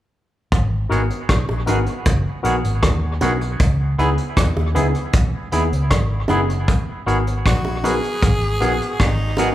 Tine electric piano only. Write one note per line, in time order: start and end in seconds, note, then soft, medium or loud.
0.89 1.03 B3 medium
0.89 1.03 D#4 medium
0.89 1.03 F#4 medium
0.89 1.04 A#4 medium
1.66 1.80 B3 medium
1.66 1.80 D#4 medium
1.66 1.81 F#4 medium
1.66 1.81 A#4 loud
2.43 2.57 B3 medium
2.43 2.57 D#4 medium
2.43 2.57 F#4 medium
2.43 2.58 A#4 loud
3.21 3.35 B3 medium
3.21 3.35 D#4 medium
3.21 3.35 F#4 medium
3.21 3.35 A#4 medium
3.99 4.12 B3 medium
3.99 4.12 D#4 medium
3.99 4.12 E4 medium
3.99 4.12 G#4 loud
4.75 4.89 B3 medium
4.75 4.89 D#4 medium
4.75 4.89 E4 medium
4.75 4.89 G#4 loud
5.53 5.66 B3 medium
5.53 5.66 D#4 medium
5.53 5.66 E4 medium
5.53 5.66 G#4 medium
6.29 6.43 B3 medium
6.29 6.43 D#4 medium
6.29 6.43 E4 medium
6.29 6.43 G#4 medium
7.06 7.20 B3 medium
7.06 7.20 D#4 medium
7.06 7.20 F#4 medium
7.06 7.20 A#4 loud
7.84 7.97 B3 medium
7.84 7.97 D#4 medium
7.84 7.98 F#4 medium
7.84 7.97 A#4 loud
8.60 8.74 B3 medium
8.60 8.74 D#4 medium
8.60 8.74 F#4 medium
8.60 8.75 A#4 medium
9.38 9.51 B3 medium
9.38 9.52 D#4 medium
9.38 9.52 F#4 medium
9.38 9.52 A#4 medium